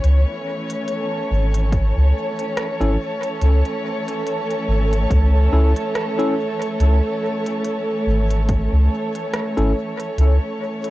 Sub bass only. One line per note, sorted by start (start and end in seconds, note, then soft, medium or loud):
0.03 0.24 C#2 loud
1.30 1.92 G#1 medium
1.96 2.13 C#2 medium
2.80 2.97 G#1 medium
3.41 3.63 C#2 loud
4.68 5.06 G#1 medium
5.10 5.48 C#2 loud
5.52 5.74 C#2 medium
6.80 7.01 C#2 loud
8.06 8.68 G#1 medium
8.72 8.88 C#2 medium
9.57 9.73 G#1 medium
10.17 10.39 C#2 loud